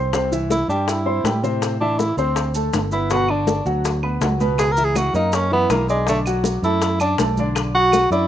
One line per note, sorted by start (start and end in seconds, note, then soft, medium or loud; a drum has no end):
0.00 0.63 C2 medium
0.00 0.10 C6 medium
0.13 0.29 C3 medium
0.13 0.29 C4 medium
0.13 0.29 C5 medium
0.13 high bongo medium
0.13 high conga soft
0.13 maracas medium
0.32 0.62 E3 medium
0.32 0.62 E4 medium
0.32 0.63 E5 medium
0.32 high conga soft
0.32 maracas medium
0.50 0.68 E4 medium
0.50 high bongo medium
0.50 high conga medium
0.50 maracas medium
0.68 1.20 G2 medium
0.68 1.00 G3 medium
0.68 0.89 D4 medium
0.68 1.00 G4 medium
0.68 1.00 G5 medium
0.68 high conga soft
0.68 maracas soft
0.88 1.43 E4 medium
0.88 high bongo medium
0.88 high conga soft
0.88 maracas medium
1.06 1.21 C4 medium
1.06 1.21 C5 medium
1.06 1.21 C6 medium
1.06 high conga soft
1.24 2.11 A2 medium
1.24 1.40 G3 medium
1.24 1.40 G4 medium
1.24 1.40 G5 medium
1.24 high bongo medium
1.24 low bongo medium
1.24 high conga medium
1.24 maracas medium
1.43 1.74 C3 medium
1.43 1.74 C4 medium
1.43 1.74 C5 medium
1.43 maracas soft
1.62 high bongo medium
1.62 high conga soft
1.62 maracas medium
1.81 2.11 E3 medium
1.81 2.00 D4 medium
1.81 2.11 E4 medium
1.81 2.12 E5 medium
1.81 high conga soft
1.99 2.17 E4 medium
1.99 high bongo medium
1.99 high conga medium
1.99 maracas medium
2.17 2.69 D2 medium
2.17 2.52 C4 medium
2.17 2.48 C4 medium
2.17 2.48 C5 medium
2.17 2.49 C6 medium
2.17 high bongo soft
2.17 high conga soft
2.17 maracas soft
2.36 high bongo medium
2.36 high conga soft
2.36 maracas medium
2.54 2.85 A3 medium
2.54 2.86 A4 medium
2.54 2.86 A5 medium
2.54 high bongo soft
2.54 high conga soft
2.54 maracas medium
2.73 3.60 G1 medium
2.73 high bongo medium
2.73 low bongo medium
2.73 high conga medium
2.73 maracas medium
2.92 3.07 B3 medium
2.92 3.13 E4 medium
2.92 3.08 B4 medium
2.92 3.08 B5 medium
2.92 high bongo soft
2.92 high conga soft
2.92 maracas soft
3.10 3.26 B2 medium
3.10 3.26 B3 medium
3.10 3.31 F#4 medium
3.10 3.26 B4 medium
3.10 high bongo medium
3.10 high conga soft
3.10 maracas medium
3.28 3.60 D3 medium
3.28 3.60 D4 medium
3.28 3.67 D4 medium
3.28 3.60 D5 medium
3.28 high conga soft
3.28 claves medium
3.47 high bongo medium
3.47 high conga medium
3.47 maracas medium
3.66 4.18 D2 medium
3.66 3.96 F#3 medium
3.66 3.97 F#4 medium
3.66 3.97 F#5 medium
3.66 high conga soft
3.66 maracas soft
3.84 high bongo medium
3.84 high conga soft
3.84 maracas medium
4.03 4.18 B3 medium
4.03 4.18 B4 medium
4.03 4.19 B5 medium
4.03 high conga soft
4.03 claves medium
4.21 5.08 C#2 medium
4.21 4.37 F#3 medium
4.21 4.37 F#4 medium
4.21 4.38 F#5 medium
4.21 high bongo medium
4.21 low bongo medium
4.21 high conga medium
4.21 maracas medium
4.40 4.71 B2 medium
4.40 4.71 B3 medium
4.40 4.71 B4 medium
4.40 high conga medium
4.40 maracas soft
4.58 4.73 G#4 medium
4.58 high bongo medium
4.58 high conga soft
4.58 claves medium
4.58 maracas medium
4.72 4.86 A#4 loud
4.77 5.08 E3 medium
4.77 5.08 E4 medium
4.77 5.08 E5 medium
4.77 high conga soft
4.77 maracas medium
4.85 4.99 G#4 medium
4.96 5.15 F#4 medium
4.96 high bongo medium
4.96 high conga medium
4.96 claves medium
4.96 maracas medium
5.14 5.66 F#2 medium
5.14 5.45 A#3 medium
5.14 5.36 D#4 medium
5.14 5.45 A#4 medium
5.14 5.45 A#5 medium
5.14 high bongo soft
5.14 high conga soft
5.14 maracas soft
5.33 5.52 C#4 medium
5.33 high bongo medium
5.33 high conga soft
5.33 maracas medium
5.51 5.82 E3 medium
5.51 5.73 B3 loud
5.51 5.82 E4 medium
5.51 5.82 E5 medium
5.51 high bongo soft
5.51 high conga soft
5.70 6.57 B1 loud
5.70 5.89 A#3 medium
5.70 high bongo medium
5.70 low bongo medium
5.70 high conga medium
5.70 claves medium
5.70 maracas medium
5.88 6.07 G#3 medium
5.88 6.04 D4 medium
5.88 6.04 D5 medium
5.88 6.05 D6 medium
5.88 high bongo soft
5.88 high conga soft
5.88 maracas soft
6.07 6.23 D3 medium
6.07 6.19 A3 medium
6.07 6.23 D4 medium
6.07 6.23 D5 medium
6.07 high bongo medium
6.07 high conga soft
6.07 maracas medium
6.26 6.57 F#3 medium
6.26 6.57 F#4 medium
6.26 6.57 F#5 medium
6.26 high conga soft
6.26 claves medium
6.26 maracas medium
6.44 high bongo medium
6.44 high conga medium
6.44 maracas medium
6.62 7.15 F#2 medium
6.62 6.94 A3 medium
6.62 6.98 E4 medium
6.62 6.94 A4 medium
6.62 6.94 A5 medium
6.62 high conga soft
6.62 maracas soft
6.82 high bongo medium
6.82 high conga soft
6.82 maracas medium
7.00 7.18 D4 medium
7.00 7.16 D4 medium
7.00 7.16 D5 medium
7.00 7.17 D6 medium
7.00 high conga soft
7.00 claves medium
7.00 maracas medium
7.18 8.06 B1 medium
7.18 7.35 A3 medium
7.18 7.35 A4 medium
7.18 7.35 A5 medium
7.18 high bongo medium
7.18 low bongo medium
7.18 high conga medium
7.18 maracas medium
7.37 7.69 D3 medium
7.37 7.69 D4 medium
7.37 7.69 D5 medium
7.37 high conga medium
7.37 maracas soft
7.55 high bongo medium
7.55 high conga soft
7.55 claves medium
7.55 maracas medium
7.74 8.05 F#3 medium
7.74 8.09 F#4 loud
7.74 8.06 F#4 medium
7.74 8.06 F#5 medium
7.74 high conga soft
7.92 high bongo medium
7.92 high conga medium
7.92 claves medium
7.92 maracas medium
8.11 8.28 F#2 medium
8.11 8.28 D4 medium
8.11 8.28 E4 medium
8.11 8.28 D5 medium
8.11 8.28 D6 medium
8.11 high bongo soft
8.11 high conga soft
8.11 maracas soft